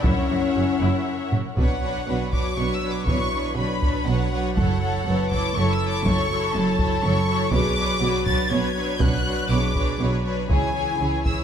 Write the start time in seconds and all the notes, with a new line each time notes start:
0.03 F#1 F#2 C#4 E4 A#4 C#5 E5 F#5, taiko
0.29 F#1 F#2 A#4
0.55 F#1 F#2 F#4
0.80 F#1 F#2 E4
1.32 F#1 F#2 F#4, taiko low-mid
1.57 B1 B2 F#3 D4 B4 C#5 F#5, taiko
1.82 F#3 D4 B4 C#5
2.08 B1 B2 F#3 D4 F#4 B4 C#5
2.33 F#3 D4 B4 C#5 D6, taiko
2.57 B1 B2 F#3 D4 B4 C#5 C#6
2.75 E6
2.83 F#3 D4 B4 C#5
2.91 D6
3.06 B1 B2 F#3 D4 E4 B4 C#5 C#6, taiko
3.33 F#3 D4 B4 C#5
3.57 B1 B2 F#3 D4 B4 C#5 B5
3.82 F#3 D4 B4 C#5, taiko
4.06 B1 B2 F#3 D4 F#4 B4 C#5 F#5
4.32 F#3 D4 B4 C#5
4.56 F#1 F#2 F#3 E4 A4 C#5 F#5, taiko
4.83 F#3 E4 A4 C#5
5.07 F#1 F#2 F#3 E4 A4 B4 C#5
5.30 F#3 E4 A4 C#5 D6, taiko
5.55 F#1 F#2 F#3 E4 A4 C#5 C#6
5.72 E6
5.81 F#3 E4 A4 C#5
5.89 D6
6.05 F#1 F#2 F#3 E4 A4 C#5 C#6, taiko
6.30 F#3 E4 A4 C#5
6.53 F#1 F#2 F#3 E4 A4 C#5 A5
6.78 F#3 E4 A4 C#5, taiko
7.03 F#1 F#2 F#3 E4 A4 C#5 C#6
7.27 F#3 E4 A4 C#5
7.52 B1 B2 F#3 D4 G#4 B4 C#5 D6, taiko
7.77 F#3 D4 B4 C#5
8.01 B1 B2 F#3 D4 F#4 B4 C#5
8.26 F#3 D4 B4 C#5 A6, taiko
8.50 B1 B2 F#3 D4 B4 C#5 G#6
8.76 F#3 D4 B4 C#5
9.00 B1 B2 F#3 D4 F#4 B4 C#5 F#6, taiko
9.25 F#3 D4 B4 C#5
9.50 B1 B2 F#3 D4 G#4 B4 C#5 D6
9.76 F#3 D4 B4 C#5, taiko
10.00 B1 B2 F#3 D4 F#4 B4 C#5
10.24 F#3 D4 B4 C#5
10.50 C#2 C#3 E3 E4 G#4 C#5 G#5, taiko
10.74 E3 E4 G#4 C#5
11.00 C#2 C#3 E3 E4 G#4 C#5
11.25 E3 E4 G#4 C#5 E6, taiko